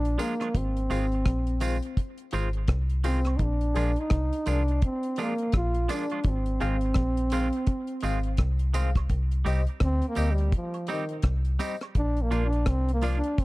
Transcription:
Already playing: A#1 D4
0.05 closed hi-hat
0.18 F3 G#3 A#3 D4 F4 G#4 A#4, closed hi-hat, tambourine
0.40 F3 G#3 D4 F4, cross-stick, closed hi-hat, high woodblock
0.55 G#1 C4, kick, closed hi-hat
0.77 closed hi-hat
0.90 G#1 D#3 G#3 C4 F4 G#4 C5, closed hi-hat, tambourine
1.12 closed hi-hat
1.26 A#1, kick, cross-stick, closed hi-hat
1.47 closed hi-hat
1.60 D#3 G#3 C4 F4 G#4 C5, closed hi-hat, tambourine
1.82 closed hi-hat
1.97 kick, closed hi-hat
2.18 closed hi-hat
2.31 G#1 D#3 G#3 C4 F4 G#4 C5, closed hi-hat, tambourine
2.53 G#4 C5, closed hi-hat
2.68 C2, kick, cross-stick, closed hi-hat
2.90 closed hi-hat
3.04 D#3 G#3 C4 F4 G#4 C5, closed hi-hat, tambourine
3.25 cross-stick, closed hi-hat, high woodblock
3.37 A#1 D#4, kick, closed hi-hat
3.43 D4
3.61 closed hi-hat
3.75 A#1 F3 G#3 D4 F4 G#4 A#4 D5, closed hi-hat, tambourine
3.96 D#4, closed hi-hat
4.10 C2, kick, cross-stick, closed hi-hat
4.33 closed hi-hat
4.46 C2 F3 G#3 D4 F4 G#4 A#4 D5, closed hi-hat, tambourine
4.50 D4
4.68 closed hi-hat
4.82 C4, kick, closed hi-hat
5.03 closed hi-hat
5.16 F3 G#3 D4 F4 G#4 A#4 D5, closed hi-hat, tambourine
5.20 A#3
5.38 A#4 D5, closed hi-hat
5.52 A#1, kick, cross-stick, closed hi-hat
5.57 F4
5.74 closed hi-hat
5.89 F3 G#3 D4 F4 G#4 A#4 D5, cross-stick, closed hi-hat, tambourine
6.10 F3 G#3 D4 F4, closed hi-hat, high woodblock
6.24 G#1, kick, closed hi-hat
6.28 C4
6.46 closed hi-hat
6.60 G#1 D#3 G#3 C4 F4 G#4 C5 F5, closed hi-hat, tambourine
6.81 closed hi-hat
6.94 A#1, kick, cross-stick, closed hi-hat
7.17 closed hi-hat
7.30 D#3 G#3 C4 F4 G#4 C5 F5, closed hi-hat, tambourine
7.53 closed hi-hat
7.67 kick, closed hi-hat
7.87 closed hi-hat
8.01 G#1 D#3 G#3 C4 F4 G#4 C5 F5, closed hi-hat, tambourine
8.23 C5 F5, closed hi-hat
8.37 C2, kick, cross-stick, closed hi-hat
8.59 closed hi-hat
8.74 D#3 G#3 C4 F4 G#4 C5 F5, closed hi-hat, tambourine
8.95 kick, cross-stick, closed hi-hat, high woodblock
9.09 C2, kick, closed hi-hat
9.31 closed hi-hat
9.45 C2 G3 C4 D#4 G4 C5 D#5, closed hi-hat, tambourine
9.67 closed hi-hat
9.80 D2, kick, cross-stick, closed hi-hat
9.84 C4
10.02 closed hi-hat
10.08 A#3
10.15 D2 G3 C4 D#4 G4 C5 D#5, closed hi-hat, tambourine
10.32 G3
10.38 closed hi-hat
10.52 F3, kick, closed hi-hat
10.74 closed hi-hat, high woodblock
10.87 D#3 G3 C4 D#4 G4 C5 D#5, closed hi-hat, tambourine
11.09 C5 D#5, closed hi-hat
11.22 C2, kick, cross-stick, closed hi-hat
11.45 closed hi-hat
11.59 G3 C4 D#4 G4 C5 D#5, cross-stick, closed hi-hat, tambourine
11.81 cross-stick, closed hi-hat, high woodblock
11.95 A#1 D4, kick, closed hi-hat
12.17 closed hi-hat
12.22 A#3
12.31 A#1 F3 A#3 D4 F4 A#4 D5, closed hi-hat, tambourine
12.46 D4
12.53 closed hi-hat
12.66 C2 C4, kick, cross-stick, closed hi-hat
12.89 closed hi-hat
12.94 A#3
13.01 F3 A#3 D4 F4 A#4 D5, closed hi-hat, tambourine
13.18 D4
13.24 closed hi-hat
13.38 C4, kick, closed hi-hat

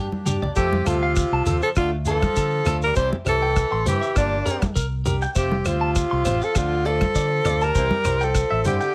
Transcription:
Already playing: A#3 D4 G4
0.12 high conga
0.25 G2 D4 G4, mid tom, low conga, shekere
0.42 D5, floor tom, low conga
0.56 F2 C3 A3 C4 F4 G4 A4, kick, shekere
0.73 high conga
0.85 D2 C3 C4 F4 A4, cross-stick, closed hi-hat, shekere
1.03 F5
1.16 kick, cross-stick, shekere
1.32 C2 A5
1.46 D#2 C4 A4, closed hi-hat, low conga, shekere
1.62 F3 A4 C5, shekere
1.75 D2 D3 A3 D4 F4, muted steel-string acoustic guitar stroke, kick, cross-stick, shekere
2.05 A3 D4 F4 A4, closed hi-hat, shekere
2.10 F3
2.22 kick, cross-stick, high conga, shekere
2.36 D3 A4, kick, shekere
2.64 D2 A3 D4 F4 A4, cross-stick, closed hi-hat, low conga, shekere
2.82 G3 A#4, shekere
2.95 C2 E3 G3 C4 E4 G4 C5, kick, shekere
3.13 high conga
3.25 C2 C4 E4 G4 A4 C5, cross-stick, closed hi-hat, shekere
3.29 E3
3.42 G5
3.56 kick, cross-stick, shekere
3.72 A1 C6
3.85 G2 E3 C4 E4 G4 C5, closed hi-hat, low conga, shekere
4.01 E5, shekere
4.16 G1 A#2 A#3 D4 G4, kick, cross-stick, shekere
4.45 D4 G4 A#4, closed hi-hat, shekere
4.62 kick, cross-stick, high conga, shekere
4.75 C2 A#4, kick, shekere
5.05 D4 G4 A#4, closed hi-hat, low conga, shekere
5.22 G5, shekere
5.35 F1 C3 A3 C4 F4 G4 C5, kick, shekere
5.52 high conga
5.65 D2 C3 C4 F4 C5, cross-stick, closed hi-hat, shekere
5.81 A5
5.95 kick, cross-stick, shekere
6.11 C2 C6
6.25 A1 C4 F4 C5, closed hi-hat, low conga, shekere
6.41 F3 A4 F5, shekere
6.55 D2 D3 F3 D4 F4, muted steel-string acoustic guitar stroke, kick, cross-stick, shekere
6.85 A3 D4 F4 A4 D5, closed hi-hat
6.89 F3
7.01 kick, cross-stick, high conga, shekere
7.15 D3 D5, kick, shekere
7.45 D2 D4 F4 D5, cross-stick, closed hi-hat, low conga, shekere
7.49 A3
7.61 G3 A#4 A5, shekere
7.75 C2 E3 C4 E4 G4 C5, kick, shekere
7.91 high conga
8.04 C2 E4 G4 C5, cross-stick, closed hi-hat, shekere
8.09 C4
8.21 F3 A4 G5, shekere
8.35 kick, cross-stick, shekere
8.50 A1 E5
8.65 G2 D3 C4 E4 G4 C5, closed hi-hat, low conga, shekere
8.81 G5, shekere

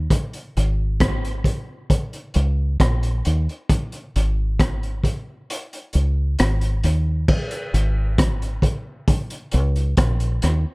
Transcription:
0.10 kick, closed hi-hat
0.33 closed hi-hat
0.57 G#1, closed hi-hat
1.00 kick, cross-stick, closed hi-hat
1.25 closed hi-hat
1.44 kick, closed hi-hat
1.90 kick, closed hi-hat
2.13 closed hi-hat
2.34 C#2, closed hi-hat
2.80 A#1, kick, cross-stick, closed hi-hat
3.03 closed hi-hat
3.25 D#2, closed hi-hat
3.49 closed hi-hat
3.69 kick, closed hi-hat
3.92 closed hi-hat
4.16 G#1, closed hi-hat
4.60 kick, cross-stick, closed hi-hat
4.83 closed hi-hat
5.04 kick, closed hi-hat
5.50 closed hi-hat
5.73 closed hi-hat
5.93 C#2, closed hi-hat
6.39 G#1, cross-stick, closed hi-hat
6.61 closed hi-hat
6.84 D#2, closed hi-hat
7.28 kick, crash
7.51 closed hi-hat
7.74 G#1, closed hi-hat
8.18 kick, cross-stick, closed hi-hat
8.42 closed hi-hat
8.62 kick, closed hi-hat
9.08 kick, closed hi-hat
9.30 closed hi-hat
9.52 C#2, closed hi-hat
9.76 closed hi-hat
9.97 A#1, kick, cross-stick, closed hi-hat
10.20 closed hi-hat
10.42 D#2, cross-stick, closed hi-hat

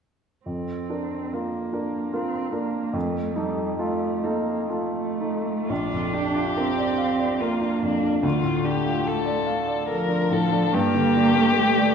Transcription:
0.46 F2 C4
0.90 D4 A#4
1.33 A#3 F4 A#4
1.73 D4 A#4
2.13 C4 F4 A#4
2.53 A#3 D4 A#4
2.93 F2 A3
3.36 G3 D#4 A4
3.79 A3 F4 A4
4.23 A#3 D#4 A4
4.70 A3 F4 A4
5.21 D#4 A4
5.67 A#1 D4 F4
5.93 F2
6.13 D4 G4
6.34 F4
6.56 C4 A#4
6.78 D5
6.98 F5
7.19 D5
7.41 A#3 F4 A#4
7.61 D4
7.82 F2 D4
8.03 D4
8.23 D2 A3 F4
8.43 A2
8.64 D4 G4
8.85 F4
9.05 A4
9.25 D5
9.47 F5
9.67 D5
9.88 F3 A4 A#4
10.08 D4
10.30 A2 A4
10.52 D4
10.73 G2 A#3 G4
10.95 D3
11.16 D4
11.35 D3
11.56 A3 G4
11.78 D5

